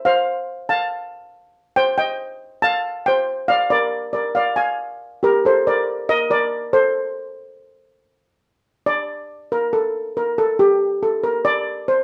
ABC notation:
X:1
M:4/4
L:1/8
Q:1/4=140
K:Fmix
V:1 name="Steel pan"
[cf]3 [fa]4 z | [cg] [eg]3 [fa]2 [cg]2 | [df] [Bd]2 [Bd] [df] [f_a]2 z | [GB] [Ac] [Bd]2 [Be] [Bd]2 [Ac]- |
[Ac]6 z2 | z d3 B A2 B | A G2 A B d2 c |]